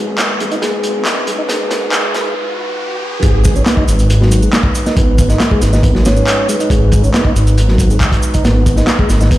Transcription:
Already playing: detuned saw bass G#1, tonewheel organ G#3, analog synth pad G#3 D#4 F#4 B4, riser
0.18 snare, clap, closed hi-hat
0.40 detuned saw bass G#1, tonewheel organ G#3, closed hi-hat
0.51 tonewheel organ D#4, closed hi-hat
0.62 tonewheel organ G#3, snare, closed hi-hat
0.83 closed hi-hat
1.05 snare, clap, closed hi-hat
1.27 tonewheel organ G#3, closed hi-hat
1.38 tonewheel organ D#4
1.49 detuned saw bass G#1, tonewheel organ G#3, snare, closed hi-hat
1.71 snare, closed hi-hat
1.92 tonewheel organ G#3, snare, clap, closed hi-hat
2.14 detuned saw bass G#1, snare, closed hi-hat
3.22 detuned saw bass G#1, analog synth pad G#3 D#4 F#4 B4, tonewheel organ G#3, kick, closed hi-hat, shaker
3.44 kick, closed hi-hat, shaker
3.56 tonewheel organ C#4, shaker
3.66 tonewheel organ B3, snare, clap, closed hi-hat, shaker
3.77 tonewheel organ D#4, kick
3.88 detuned saw bass G#1, closed hi-hat, shaker
3.99 closed hi-hat, shaker
4.10 closed hi-hat, shaker
4.21 tonewheel organ F#3, snare
4.31 closed hi-hat, shaker
4.43 tonewheel organ G#3, shaker
4.53 snare, clap, closed hi-hat, shaker
4.63 kick
4.75 closed hi-hat, shaker
4.86 tonewheel organ D#4, snare, shaker
4.96 detuned saw bass G#1, tonewheel organ B3, kick, closed hi-hat, shaker
5.18 kick, closed hi-hat, shaker
5.29 tonewheel organ D#4, snare, shaker
5.40 snare, clap, closed hi-hat, shaker
5.51 tonewheel organ G#3, kick
5.61 detuned saw bass G#1, snare, closed hi-hat, shaker
5.73 tonewheel organ D#4, snare, shaker
5.83 tonewheel organ B3, kick, closed hi-hat, shaker
5.95 tonewheel organ F#3, snare
6.05 tonewheel organ C#4, snare, closed hi-hat, shaker
6.16 shaker
6.27 clap, closed hi-hat, shaker
6.49 tonewheel organ G#3, closed hi-hat, shaker
6.60 tonewheel organ D#4, closed hi-hat, shaker
6.70 detuned saw bass G#1, tonewheel organ G#3, kick, closed hi-hat, shaker
6.92 kick, closed hi-hat, shaker
7.04 tonewheel organ C#4, shaker
7.14 tonewheel organ B3, snare, clap, closed hi-hat, shaker
7.25 tonewheel organ D#4, kick
7.36 detuned saw bass G#1, closed hi-hat, shaker
7.47 closed hi-hat, shaker
7.58 closed hi-hat, shaker
7.68 tonewheel organ F#3, snare
7.78 kick, closed hi-hat, shaker
7.90 tonewheel organ G#3, shaker
8.01 kick, clap, closed hi-hat, shaker
8.12 kick, closed hi-hat
8.22 shaker
8.34 tonewheel organ D#4, kick, closed hi-hat, shaker
8.44 detuned saw bass G#1, tonewheel organ B3, snare, closed hi-hat, shaker
8.66 kick, closed hi-hat, shaker
8.76 tonewheel organ D#4, snare, shaker
8.87 snare, clap, closed hi-hat, shaker
8.99 tonewheel organ G#3, kick
9.09 detuned saw bass G#1, snare, closed hi-hat, shaker
9.21 tonewheel organ D#4, snare, shaker
9.31 detuned saw bass D#1, tonewheel organ B3, kick, closed hi-hat, shaker

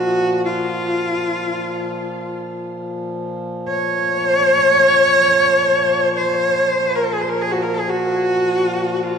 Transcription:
Already playing: harmonium A#2 F3, cello F#4
0.45 cello F4
3.68 cello C#5
6.17 cello C5
6.96 cello A#4
7.13 cello G#4
7.22 cello C5
7.29 cello A#4
7.41 cello G#4
7.51 cello F#4
7.63 cello A#4
7.75 cello G#4
7.90 cello F#4
8.95 cello F#4
9.03 cello F4

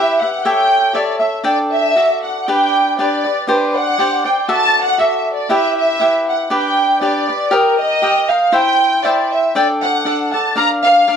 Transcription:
Already playing: cavaquinho E4 G4 B4 E5, violin section E5
0.20 cavaquinho G4 B4 E5, violin section F#5
0.44 cavaquinho G4 A4 C#5 E5, violin section G5
0.93 cavaquinho G4 A4 C#5 E5, violin section D5
1.20 cavaquinho A4 C#5 E5, violin section E5
1.44 cavaquinho D4 A4 D5 G5, violin section D5
1.72 violin section E5
1.96 cavaquinho F#4 A4 D5 E5
2.24 violin section F#5
2.47 cavaquinho D4 G4 B4 D5, violin section G5
2.99 cavaquinho D4 G4 B4 D5, violin section D5
3.24 cavaquinho G4 B4 D5
3.47 cavaquinho D4 G4 C5 D5, violin section B4
3.76 violin section F#5
3.98 cavaquinho D4 G4 C5 D5
4.24 cavaquinho G4 C5 D5, violin section G5
4.48 cavaquinho F#4 A4 D5 E5, violin section A5
4.85 violin section F#5
4.98 cavaquinho F#4 A4 D5 E5, violin section E5
5.34 violin section D5
5.49 cavaquinho E4 G4 B4 E5, violin section E5
5.79 violin section E5
6.00 cavaquinho E4 G4 B4 E5
6.30 violin section F#5
6.50 cavaquinho D4 G4 B4 D5, violin section G5
7.01 cavaquinho D4 G4 B4 D5, violin section D5
7.28 cavaquinho G4 B4 D5
7.51 cavaquinho G4 A#4 D#5 G5, violin section A#4
7.80 violin section D#5
8.02 cavaquinho G4 A#4 D#5 G5
8.29 cavaquinho A#4 D#5 G5, violin section F5
8.52 cavaquinho E4 C5 E5 G5, violin section G5
9.04 cavaquinho E4 C5 E5 G5, violin section D5
9.32 violin section E5
9.55 cavaquinho D4 A4 D5 G5, violin section D5
9.84 violin section F#5
10.05 cavaquinho D4 A4 D5 F#5
10.32 cavaquinho A4 D5 F#5, violin section A5
10.56 cavaquinho D4 A#4 D5 F5, violin section A#5
10.85 violin section F5
11.08 cavaquinho D4 A#4 D5 F5

